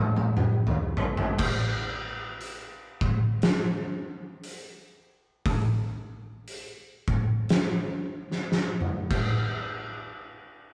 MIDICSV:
0, 0, Header, 1, 2, 480
1, 0, Start_track
1, 0, Tempo, 1016949
1, 659, Time_signature, 4, 2, 24, 8
1, 5065, End_track
2, 0, Start_track
2, 0, Title_t, "Drums"
2, 78, Note_on_c, 9, 48, 77
2, 125, Note_off_c, 9, 48, 0
2, 173, Note_on_c, 9, 47, 84
2, 220, Note_off_c, 9, 47, 0
2, 315, Note_on_c, 9, 45, 77
2, 363, Note_off_c, 9, 45, 0
2, 458, Note_on_c, 9, 43, 81
2, 505, Note_off_c, 9, 43, 0
2, 554, Note_on_c, 9, 43, 81
2, 601, Note_off_c, 9, 43, 0
2, 653, Note_on_c, 9, 49, 115
2, 657, Note_on_c, 9, 36, 114
2, 700, Note_off_c, 9, 49, 0
2, 704, Note_off_c, 9, 36, 0
2, 1136, Note_on_c, 9, 46, 55
2, 1183, Note_off_c, 9, 46, 0
2, 1421, Note_on_c, 9, 36, 86
2, 1469, Note_off_c, 9, 36, 0
2, 1614, Note_on_c, 9, 46, 55
2, 1620, Note_on_c, 9, 38, 108
2, 1661, Note_off_c, 9, 46, 0
2, 1667, Note_off_c, 9, 38, 0
2, 2094, Note_on_c, 9, 46, 58
2, 2141, Note_off_c, 9, 46, 0
2, 2575, Note_on_c, 9, 36, 106
2, 2576, Note_on_c, 9, 46, 58
2, 2622, Note_off_c, 9, 36, 0
2, 2623, Note_off_c, 9, 46, 0
2, 3057, Note_on_c, 9, 46, 58
2, 3104, Note_off_c, 9, 46, 0
2, 3340, Note_on_c, 9, 36, 82
2, 3387, Note_off_c, 9, 36, 0
2, 3537, Note_on_c, 9, 46, 61
2, 3542, Note_on_c, 9, 38, 102
2, 3584, Note_off_c, 9, 46, 0
2, 3589, Note_off_c, 9, 38, 0
2, 3925, Note_on_c, 9, 38, 33
2, 3972, Note_off_c, 9, 38, 0
2, 4020, Note_on_c, 9, 38, 58
2, 4067, Note_off_c, 9, 38, 0
2, 4156, Note_on_c, 9, 47, 60
2, 4204, Note_off_c, 9, 47, 0
2, 4297, Note_on_c, 9, 49, 79
2, 4298, Note_on_c, 9, 36, 99
2, 4344, Note_off_c, 9, 49, 0
2, 4345, Note_off_c, 9, 36, 0
2, 5065, End_track
0, 0, End_of_file